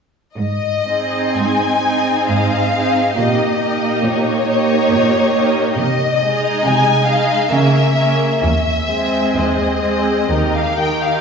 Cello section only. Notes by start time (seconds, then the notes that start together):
0.37 G#2
1.37 G#2
2.29 G#2
3.17 A#2
4.03 A#2
4.91 A#2
5.77 C3
6.64 C3
7.50 C#3
8.42 D#2
9.35 D#2
10.30 D#2